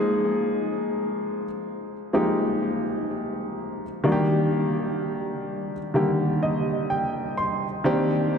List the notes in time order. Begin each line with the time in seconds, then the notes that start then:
Already playing: F3 G#3 A#3 D#4 G#4
2.13 F3 G#3 A#3 D#4 G4
4.04 D#3 G3 A#3 D4 F#4
4.12 G4
5.94 D3 D#3 G3 A#3 G4
6.43 D#5
6.90 G5
7.37 C6
7.84 D#3 A#3 C4 D4 G4